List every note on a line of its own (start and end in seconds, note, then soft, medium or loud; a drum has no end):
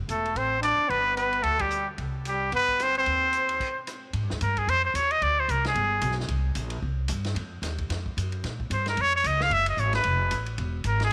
0.09 0.34 E1 medium
0.09 0.38 A3 medium
0.09 0.39 A4 medium
0.09 hi-hat pedal medium
0.09 ride medium
0.25 ride soft
0.35 0.75 A1 medium
0.35 0.60 C4 medium
0.35 0.62 C5 medium
0.35 ride medium
0.61 0.90 D4 medium
0.61 0.92 D5 medium
0.61 cross-stick medium
0.61 hi-hat pedal medium
0.61 ride medium
0.78 muted upright bass stroke soft
0.88 1.41 G1 medium
0.88 1.15 B3 medium
0.88 1.16 B4 medium
0.88 ride soft
1.15 1.44 B3 medium
1.15 1.44 B4 medium
1.15 hi-hat pedal soft
1.15 ride medium
1.33 ride soft
1.42 1.95 D2 medium
1.42 1.60 A3 medium
1.42 1.62 A4 medium
1.42 ride medium
1.59 1.86 G3 medium
1.59 1.88 G4 medium
1.59 kick medium
1.59 ride medium
1.71 hi-hat pedal medium
1.98 2.50 C2 medium
1.98 ride medium
2.25 2.51 G3 medium
2.25 2.52 G4 medium
2.25 hi-hat pedal medium
2.25 ride medium
2.52 3.04 G1 medium
2.52 2.84 B3 medium
2.52 2.84 B4 loud
2.52 ride medium
2.68 kick soft
2.80 2.96 C4 medium
2.80 2.97 C5 medium
2.80 cross-stick medium
2.80 hi-hat pedal medium
2.80 ride medium
2.95 3.85 C4 medium
2.95 3.85 C5 medium
2.95 ride soft
3.06 3.58 D#2 medium
3.06 ride medium
3.33 hi-hat pedal medium
3.33 ride medium
3.49 ride medium
3.60 kick medium
3.60 crash medium
3.87 cross-stick medium
3.87 hi-hat pedal medium
3.87 ride medium
4.13 4.23 G#2 medium
4.13 ride medium
4.23 4.31 G2 medium
4.30 4.40 D#2 medium
4.30 snare soft
4.41 4.67 G2 loud
4.41 4.60 A#4 medium
4.41 hi-hat pedal soft
4.41 ride medium
4.57 4.71 G#4 medium
4.57 kick soft
4.57 ride soft
4.67 4.93 F2 medium
4.67 4.84 C5 loud
4.67 ride medium
4.85 4.97 C5 medium
4.94 5.20 D#2 medium
4.94 5.13 C#5 medium
4.94 hi-hat pedal medium
4.94 ride medium
5.11 5.24 D#5 loud
5.11 ride soft
5.22 5.48 D2 loud
5.22 5.41 D5 loud
5.22 ride medium
5.40 5.52 C5 medium
5.48 5.75 C2 medium
5.48 5.65 A#4 medium
5.48 hi-hat pedal medium
5.48 ride medium
5.65 6.16 G#4 medium
5.65 snare medium
5.65 ride soft
5.75 6.01 G1 medium
5.75 ride medium
6.01 6.28 B1 loud
6.01 hi-hat pedal medium
6.01 ride medium
6.11 snare soft
6.20 snare soft
6.28 6.55 C2 medium
6.28 ride medium
6.55 6.82 A#1 loud
6.55 hi-hat pedal medium
6.55 ride medium
6.70 ride medium
6.82 7.08 C2 loud
7.08 7.34 G2 loud
7.08 hi-hat pedal medium
7.08 ride medium
7.25 snare soft
7.25 ride soft
7.35 7.61 F2 medium
7.35 ride medium
7.62 7.89 D#2 medium
7.62 snare soft
7.62 hi-hat pedal medium
7.62 ride medium
7.78 kick medium
7.78 ride soft
7.89 8.16 F2 medium
7.89 snare soft
7.89 ride medium
8.06 kick medium
8.17 8.43 F#2 medium
8.17 hi-hat pedal medium
8.17 ride medium
8.32 ride soft
8.44 8.70 A#2 medium
8.44 snare soft
8.44 ride medium
8.60 kick medium
8.70 8.96 G2 medium
8.70 8.87 C5 medium
8.70 hi-hat pedal medium
8.70 ride medium
8.86 9.03 A#4 medium
8.86 snare soft
8.86 ride soft
8.97 9.23 F2 medium
8.97 ride medium
9.01 9.15 C#5 loud
9.16 9.28 C#5 loud
9.24 9.50 C#2 loud
9.24 9.44 D#5 medium
9.24 hi-hat pedal medium
9.24 ride medium
9.40 9.55 F5 loud
9.40 snare medium
9.50 9.76 F#1 medium
9.50 9.68 E5 loud
9.50 ride medium
9.66 9.81 D#5 medium
9.66 ride medium
9.77 10.04 G#1 medium
9.77 9.94 C#5 medium
9.77 hi-hat pedal medium
9.93 10.44 B4 medium
9.93 snare soft
9.93 ride medium
10.04 10.31 F1 medium
10.04 ride medium
10.31 10.58 A1 medium
10.31 hi-hat pedal medium
10.31 ride medium
10.46 ride soft
10.58 10.84 E1 medium
10.58 ride medium
10.84 11.11 G#1 loud
10.84 11.01 A#4 medium
10.84 hi-hat pedal medium
10.84 ride medium
11.00 snare soft
11.00 ride soft
11.04 11.13 G#4 medium